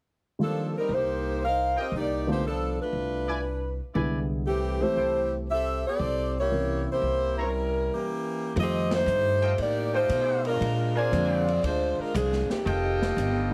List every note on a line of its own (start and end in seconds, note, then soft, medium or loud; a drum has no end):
0.39 0.70 D#3 soft
0.39 0.73 F3 medium
0.39 0.70 G3 soft
0.39 0.71 A#3 soft
0.39 0.73 A#3 medium
0.39 0.73 D4 medium
0.39 0.71 F4 soft
0.39 0.73 A4 medium
0.77 0.91 G3 medium
0.77 0.91 C4 medium
0.77 0.91 D#4 medium
0.77 0.91 A#4 medium
0.89 1.74 C2 medium
0.89 1.42 A#3 medium
0.89 1.42 D#4 medium
0.89 1.42 G4 medium
0.89 1.42 C5 medium
1.44 1.75 D#4 medium
1.44 1.75 A#4 medium
1.44 1.75 C5 medium
1.44 1.75 F5 medium
1.76 1.93 C4 medium
1.76 1.86 F4 medium
1.76 1.87 A#4 medium
1.76 1.93 A#4 medium
1.76 1.86 D#5 medium
1.76 1.94 D#5 medium
1.76 1.87 G5 medium
1.80 1.94 G4 medium
1.92 2.77 C2 medium
1.92 2.26 D#4 medium
1.96 2.26 A#3 medium
1.96 2.26 G4 medium
1.96 2.26 D5 medium
2.27 2.41 D3 medium
2.27 2.41 A3 medium
2.27 2.41 B3 soft
2.27 2.42 F4 medium
2.27 2.45 G4 medium
2.31 2.45 A#3 medium
2.31 2.45 D#4 medium
2.31 2.45 C5 medium
2.46 2.77 F3 medium
2.46 2.77 B3 medium
2.46 2.77 D4 medium
2.46 2.77 A4 medium
2.81 3.46 A3 medium
2.81 3.82 D4 medium
2.81 3.47 F4 medium
2.81 3.82 B4 medium
2.93 3.79 C2 medium
3.27 3.39 E4 medium
3.27 3.39 B4 medium
3.27 3.39 D5 medium
3.27 3.39 G#5 medium
3.94 4.81 C2 medium
3.94 4.46 D3 soft
3.94 4.47 G#3 soft
3.94 4.47 B3 soft
3.94 4.19 E4 medium
3.94 4.47 E4 medium
3.94 4.19 B4 medium
3.94 4.19 D5 medium
3.94 4.19 G#5 medium
4.46 4.80 E3 medium
4.46 4.80 A3 medium
4.46 4.79 C4 medium
4.46 4.80 G4 medium
4.81 5.46 E3 medium
4.81 5.46 A3 medium
4.81 5.33 A3 medium
4.81 5.46 C4 medium
4.81 5.33 E4 medium
4.81 5.33 G4 medium
4.81 5.46 G4 medium
4.81 5.33 C5 medium
4.96 5.83 C2 medium
4.96 5.21 E4 medium
4.96 5.21 A4 medium
4.96 5.21 C5 medium
4.96 5.21 G5 medium
5.50 5.82 C4 medium
5.50 5.83 G4 medium
5.50 5.83 A4 medium
5.50 5.83 E5 medium
5.87 6.33 C4 medium
5.87 6.33 G4 medium
5.87 6.33 A4 medium
5.87 6.33 D5 medium
5.99 6.85 C2 medium
6.39 6.85 A#3 medium
6.39 6.85 E4 medium
6.39 6.85 G4 medium
6.39 6.85 C#5 medium
6.51 7.95 C3 soft
6.51 7.95 E3 soft
6.51 7.95 C#4 soft
6.51 7.95 A#4 soft
6.91 7.40 A#3 medium
6.91 7.40 E4 medium
6.91 7.40 G4 medium
6.91 7.40 C5 medium
7.02 7.88 C2 medium
7.37 7.48 E4 medium
7.37 7.48 C5 medium
7.37 7.48 C#5 medium
7.37 7.48 A#5 medium
7.42 8.07 G3 medium
7.42 7.92 C#4 medium
7.42 8.07 E4 medium
7.42 8.07 A#4 medium
7.93 8.54 E3 medium
7.93 8.54 A#3 medium
7.93 8.54 C#4 medium
7.93 8.54 G4 medium
8.56 9.05 F2 medium
8.56 10.00 D#3 soft
8.56 10.00 G3 soft
8.56 10.00 A3 soft
8.56 10.00 C4 soft
8.56 10.00 F4 soft
8.56 kick soft
8.56 ride medium
8.60 8.91 C4 loud
8.60 8.91 G4 medium
8.60 8.91 A4 loud
8.60 8.91 D#5 loud
8.91 9.56 A3 medium
8.91 9.56 D#4 medium
8.91 9.56 G4 medium
8.91 9.56 C5 loud
8.91 snare medium
8.91 ride medium
9.06 9.56 G2 medium
9.06 hi-hat pedal medium
9.42 9.53 F4 medium
9.42 9.53 A4 medium
9.42 9.53 D#5 medium
9.42 9.53 G5 medium
9.42 ride soft
9.58 10.08 A2 medium
9.58 9.94 A#3 medium
9.58 9.94 D#4 medium
9.58 9.94 G4 medium
9.58 9.95 D5 medium
9.58 kick soft
9.58 ride medium
9.93 10.42 A3 medium
9.93 10.42 D#4 medium
9.93 10.57 F4 medium
9.93 10.42 G4 medium
9.93 10.57 A4 medium
9.93 10.42 C5 loud
9.93 10.57 D#5 medium
9.93 10.57 G5 loud
10.09 10.59 B2 medium
10.09 kick soft
10.09 hi-hat pedal soft
10.09 ride medium
10.45 10.93 G#3 medium
10.45 10.93 D4 medium
10.45 10.93 F4 medium
10.45 10.93 A#4 medium
10.45 ride soft
10.61 11.10 A#2 medium
10.61 kick soft
10.61 ride medium
10.95 11.63 C4 medium
10.95 11.59 D4 loud
10.95 11.63 F4 medium
10.95 11.63 G#4 medium
10.95 11.59 A#4 medium
10.95 11.59 C5 medium
10.95 11.63 D5 loud
10.95 11.59 G#5 loud
11.12 11.61 F2 medium
11.12 11.43 D3 medium
11.12 11.43 G#3 soft
11.12 11.44 A#3 soft
11.12 11.44 C4 soft
11.12 11.44 F4 medium
11.12 kick soft
11.12 hi-hat pedal medium
11.12 ride medium
11.48 ride soft
11.63 11.95 D2 medium
11.63 11.97 G#3 medium
11.63 11.96 D4 medium
11.63 11.96 F4 medium
11.63 11.96 C5 medium
11.63 kick soft
11.63 ride medium
11.98 12.14 G#3 medium
11.98 12.14 D4 medium
11.98 12.14 F4 medium
11.98 12.14 A#4 medium
11.98 muted upright bass stroke soft
12.14 12.47 C2 loud
12.14 12.47 F3 medium
12.14 12.47 C4 medium
12.14 12.47 D4 medium
12.14 12.47 G#4 medium
12.14 kick soft
12.14 hi-hat pedal medium
12.14 ride medium
12.33 snare soft
12.49 13.48 D#3 medium
12.49 13.48 A3 medium
12.49 13.48 C4 medium
12.49 13.48 G4 medium
12.49 muted upright bass stroke soft
12.49 snare soft
12.65 13.15 F1 medium
12.65 13.54 F4 medium
12.65 13.54 A4 medium
12.65 13.54 D#5 medium
12.65 13.54 G5 medium
12.65 kick soft
12.65 ride medium
13.02 snare medium
13.17 13.54 G1 medium
13.17 kick soft
13.17 hi-hat pedal medium
13.17 ride medium